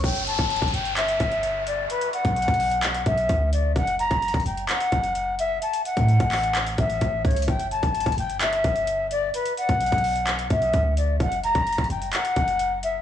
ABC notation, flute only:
X:1
M:4/4
L:1/8
Q:1/4=129
K:Bm
V:1 name="Flute"
g a2 g e3 d | B f4 e2 d | f ^a2 g f3 e | a f4 e2 c |
g a2 g e3 d | B f4 e2 d | f ^a2 g f3 e |]